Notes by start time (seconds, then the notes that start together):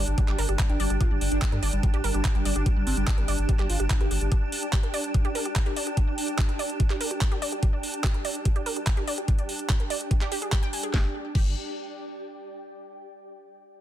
Already playing: D4 G4 D5 G5
0.07 G1
0.18 G3 G4, kick, closed hi-hat
0.28 G1 G3 G4, clap, closed hi-hat
0.38 G1 D4 A#4, open hi-hat
0.49 G1 G3 G4, closed hi-hat
0.59 kick, clap, closed hi-hat
0.69 G1 D4 G5, closed hi-hat
0.80 G1 G3 D5, open hi-hat
0.90 G1 G3 G4, closed hi-hat
1.01 F4 G4, kick, closed hi-hat
1.11 G1 G3
1.21 G1 G3, open hi-hat
1.32 G1 D4, closed hi-hat
1.42 G3 G4, kick, clap, closed hi-hat
1.52 G2 G3 A#4, closed hi-hat
1.63 G1 D4 D5, open hi-hat
1.73 G1 G3, closed hi-hat
1.83 G3 G4, kick, closed hi-hat
1.94 G#1 D4 G4, closed hi-hat
2.04 G1 G3 A#4, open hi-hat
2.14 G1 G3 G4, closed hi-hat
2.25 kick, clap, closed hi-hat
2.35 G1 G3 G5, closed hi-hat
2.45 G1 G3 D5, open hi-hat
2.56 G1 D4 G4, closed hi-hat
2.66 G3 G4, kick, closed hi-hat
2.76 G1 G3
2.87 G1 C4, open hi-hat
2.97 G1 G3, closed hi-hat
3.07 D4 G4, kick, clap, closed hi-hat
3.18 G1 G3 A#4, closed hi-hat
3.28 G1 G3 D5, open hi-hat
3.39 G1, closed hi-hat
3.49 G3 G4, kick, closed hi-hat
3.59 G1 G3 G4, clap, closed hi-hat
3.70 G1 F4, open hi-hat
3.80 G1 G3 G4, closed hi-hat
3.90 G3 F4, kick, clap, closed hi-hat
4.01 G1 G4 A#4, closed hi-hat
4.11 G1 G3 G4, open hi-hat
4.21 G1 G3, closed hi-hat
4.32 G4, kick, closed hi-hat
4.52 open hi-hat
4.63 closed hi-hat
4.73 G4, kick, clap, closed hi-hat
4.83 A#4, closed hi-hat
4.94 D5, open hi-hat
5.04 closed hi-hat
5.14 G4, kick, closed hi-hat
5.25 G4, closed hi-hat
5.35 A#4, open hi-hat
5.45 G4, closed hi-hat
5.56 kick, clap, closed hi-hat
5.66 G4, closed hi-hat
5.76 D5, open hi-hat
5.87 G4, closed hi-hat
5.97 G4, kick, closed hi-hat
6.18 open hi-hat
6.28 closed hi-hat
6.39 G4, kick, clap, closed hi-hat
6.49 A#4, closed hi-hat
6.59 D5, open hi-hat
6.70 closed hi-hat
6.80 G4, kick, closed hi-hat
6.90 G4, clap, closed hi-hat
7.01 A#4, open hi-hat
7.11 G4
7.21 kick, clap, closed hi-hat
7.32 G4, closed hi-hat
7.42 D5, open hi-hat
7.52 G4, closed hi-hat
7.63 G4, kick, closed hi-hat
7.83 open hi-hat
7.94 closed hi-hat
8.04 G4, kick, clap, closed hi-hat
8.14 A#4, closed hi-hat
8.25 D5, open hi-hat
8.35 closed hi-hat
8.45 G4, kick, closed hi-hat
8.56 G4, closed hi-hat
8.66 A#4, open hi-hat
8.76 G4, closed hi-hat
8.87 kick, clap, closed hi-hat
8.97 G4, closed hi-hat
9.07 D5, open hi-hat
9.18 G4, closed hi-hat
9.28 G4, kick, closed hi-hat
9.39 closed hi-hat
9.49 open hi-hat
9.59 closed hi-hat
9.70 G4, kick, clap, closed hi-hat
9.80 A#4, closed hi-hat
9.90 D5, open hi-hat
10.01 closed hi-hat
10.11 G4, kick, closed hi-hat
10.21 G4, clap, closed hi-hat
10.32 G4, open hi-hat
10.42 G#4, closed hi-hat
10.52 G4, kick, clap, closed hi-hat
10.63 G5, closed hi-hat
10.73 G#5, open hi-hat
10.83 G#4, closed hi-hat
10.94 G1 G4, kick, snare
11.00 D5
11.06 G5
11.35 G1 G4, kick, crash